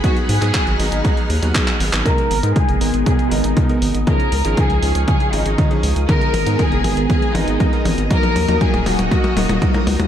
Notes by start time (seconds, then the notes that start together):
Already playing: G#4 F#5 B5
0.04 F#3 B3 D#4 F#4 G#4 F6, kick, closed hi-hat
0.17 closed hi-hat
0.29 G#2 G#4, open hi-hat
0.42 G#2 F#3 B3 D#4 G#4, clap, closed hi-hat
0.54 kick, clap, closed hi-hat
0.67 G#1, closed hi-hat
0.79 G#1 F#3 B3 D#4 G#4, open hi-hat
0.92 G#1, closed hi-hat
1.05 kick, closed hi-hat
1.17 closed hi-hat
1.30 D#2, open hi-hat
1.42 D#2 F#3 B3 D#4 G#4, closed hi-hat
1.55 kick, clap, closed hi-hat
1.68 clap, closed hi-hat
1.80 G#1, open hi-hat
1.93 G#1 F#3 B3 D#4 G#4, clap, closed hi-hat
2.06 G#3 B3 D#4 A#4 G#5 A#5 D#6, kick, closed hi-hat, mid tom
2.18 closed hi-hat
2.31 G#1, open hi-hat
2.43 G#2 G#3 B3 D#4 A#4, closed hi-hat
2.56 G#4, kick, closed hi-hat, mid tom
2.69 F#1, closed hi-hat
2.81 G#1 G#3 B3 D#4 A#4, open hi-hat
2.94 G#1, closed hi-hat
3.06 G#4, kick, closed hi-hat, mid tom
3.19 closed hi-hat
3.31 G#1 G#3 B3 D#4 A#4, open hi-hat
3.44 G#1, closed hi-hat
3.57 kick, closed hi-hat, mid tom
3.69 G#3 B3 D#4 A#4, closed hi-hat
3.82 G#1, open hi-hat
3.94 G#1, closed hi-hat
4.07 F3 C#4 D#4 G#4 A#4 F5 C#6, kick, closed hi-hat, mid tom
4.20 closed hi-hat
4.32 C#2, open hi-hat
4.45 G#1 F3 C#4 D#4 G#4, closed hi-hat
4.57 G#4, kick, closed hi-hat, mid tom
4.70 C#2, closed hi-hat
4.83 C#2 F3 C#4 D#4 G#4, open hi-hat
4.95 C#2, closed hi-hat
5.08 G#4, kick, closed hi-hat, mid tom
5.20 closed hi-hat
5.33 G#1 F3 C#4 D#4 G#4, open hi-hat
5.46 G#1, closed hi-hat
5.58 kick, closed hi-hat, mid tom
5.71 F3 C#4 D#4 G#4, closed hi-hat
5.83 C#2, open hi-hat
5.96 C#2, closed hi-hat
6.09 G#3 B3 D#4 G#4 A#4 A#5, kick, closed hi-hat, mid tom
6.21 closed hi-hat
6.34 G#1, open hi-hat, mid tom
6.46 G#2 G#3 B3 D#4 A#4, closed hi-hat
6.59 G#4, kick, closed hi-hat, mid tom
6.72 F#1, closed hi-hat
6.84 G#1 G#3 B3 D#4 A#4, open hi-hat, mid tom
6.97 G#1, closed hi-hat
7.10 G#4, kick, closed hi-hat, mid tom
7.22 closed hi-hat
7.35 G#1 G#3 B3 D#4 A#4, open hi-hat, mid tom
7.47 G#1, closed hi-hat
7.60 kick, closed hi-hat, mid tom
7.73 G#3 B3 D#4 A#4, closed hi-hat
7.85 G#1, open hi-hat, mid tom
7.98 G#1, closed hi-hat
8.11 F#3 A#3 D#4 F#4 A#4 D#5, kick, closed hi-hat, mid tom
8.23 closed hi-hat, mid tom
8.36 D#2, open hi-hat, mid tom
8.48 D#2 F#3 A#3 D#4 A#4, closed hi-hat, mid tom
8.61 G#4, kick, closed hi-hat, mid tom
8.74 D#1, closed hi-hat, mid tom
8.86 D#1 F#3 A#3 D#4 F#4 A#4, open hi-hat, mid tom
8.99 D#1, closed hi-hat, mid tom
9.11 kick, closed hi-hat, mid tom
9.24 closed hi-hat, mid tom
9.36 D#1 F#3 A#3 D#4 A#4, open hi-hat, mid tom
9.49 D#1, closed hi-hat, mid tom
9.62 kick, closed hi-hat, mid tom
9.74 F#3 A#3 D#4 A#4, closed hi-hat, mid tom
9.87 C#2, open hi-hat, mid tom
10.00 D#2, closed hi-hat, mid tom